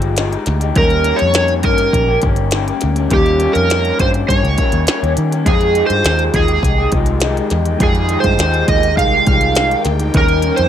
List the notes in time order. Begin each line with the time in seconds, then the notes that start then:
Already playing: G1 F3 G#3 D#4 F4 G4 G#4
0.02 closed hi-hat
0.17 F3 G#3 D#4 G4, snare, closed hi-hat
0.31 G#3 D#4 G4, closed hi-hat
0.46 D2, snare, closed hi-hat
0.60 G#3 D#4 G4, closed hi-hat
0.74 D#2 D#3 F#3 A#3 C#4 D#4 G4 A#4, kick, closed hi-hat
0.79 G3 A#4
0.90 closed hi-hat
1.04 D#3 A#3 C#4, closed hi-hat
1.09 G4
1.16 C#5, closed hi-hat
1.22 F2
1.34 D#3 A#3 C#4 G4, snare, closed hi-hat
1.48 closed hi-hat
1.63 G2 D#3 A#3 C#4 G4 A#4, kick, closed hi-hat
1.77 A#3 C#4 G4, closed hi-hat
1.93 A#1, kick, closed hi-hat
2.08 A#3 C#4 G4
2.21 G1 D#3 A#3 C#4 G4, kick, closed hi-hat
2.36 closed hi-hat
2.51 D#3 A#3 C#4 G4, snare, closed hi-hat
2.66 A#3 C#4 G4, closed hi-hat
2.81 D2, snare, closed hi-hat
2.96 A#3 C#4 G4, closed hi-hat
3.09 D#2 D#3 G3 A#3 C#4 D#4 G4, kick, closed hi-hat
3.13 F4 G4
3.26 closed hi-hat
3.40 D#3 A#3 C#4 G4, closed hi-hat
3.53 F2 A#4, closed hi-hat
3.69 D#3 A#3 C#4 G4, snare, closed hi-hat
3.85 closed hi-hat
3.99 G2 D#3 A#3 C#4 G4 C5, kick, closed hi-hat
4.14 C#4 G4, closed hi-hat
4.19 A#3
4.28 G2 C#5, kick, closed hi-hat
4.43 C#2 A#3 C#4 G4, closed hi-hat
4.58 D#3 A#3 C#4, kick, closed hi-hat
4.63 G4
4.72 D#2, closed hi-hat
4.87 D#3 A#3 C#4 G4, snare, closed hi-hat
5.03 D#2 A#3 C#4 G4, closed hi-hat
5.17 D#3, closed hi-hat
5.31 A#3 C#4 G4, closed hi-hat
5.44 F2 D#3 F3 G#3 D#4 F4 G#4 G5, kick, closed hi-hat
5.48 D#4 G4 G#4
5.61 closed hi-hat
5.75 F3 G#3 D#4 G4, closed hi-hat
5.86 G2 C5, closed hi-hat
6.05 D#2 F3 G#3 D#4 G4, snare, closed hi-hat
6.19 closed hi-hat
6.33 D#2 F3 G#3 D#4 G4 G#4, kick, closed hi-hat
6.48 G#3 D#4 G4, closed hi-hat
6.63 C2, kick, closed hi-hat
6.78 G#3 D#4 G4
6.92 C2 F3 G#3, kick, closed hi-hat
6.96 D#4 G4
7.06 closed hi-hat
7.20 F3 G#3 D#4 G4, snare, closed hi-hat
7.36 G#3 D#4 G4, closed hi-hat
7.50 E2, snare, closed hi-hat
7.65 D#4 G4, closed hi-hat
7.70 G#3
7.77 F2 F3 G#3 D#4 F4, kick, closed hi-hat
7.81 G#3 D#4 G4 G#4
7.95 closed hi-hat
8.09 F3 G#3 D#4 G4, closed hi-hat
8.20 C5, closed hi-hat
8.24 G2, kick
8.38 D#2 F3 G#3 D#4 G4, snare, closed hi-hat
8.54 closed hi-hat
8.68 D#2 F3 G#3 D#4 D#5, kick, closed hi-hat
8.73 G4
8.82 G#3 D#4 G4, closed hi-hat
8.97 C2 F5, kick, closed hi-hat
9.12 G#3 D#4 G4
9.27 C2 F3 G#3 D#4, kick, closed hi-hat
9.31 G4
9.41 closed hi-hat
9.55 F3 G#3 D#4, snare, closed hi-hat
9.60 G4
9.71 G#3 D#4 G4, closed hi-hat
9.85 D2, snare, closed hi-hat
10.00 G#3 D#4 G4, closed hi-hat
10.12 D#2 D#3 G3 A#3 C#4 D#4 G4, kick, closed hi-hat
10.17 A#4
10.29 closed hi-hat
10.42 D#3 A#3 C#4, closed hi-hat
10.47 G4
10.56 F2 C5, closed hi-hat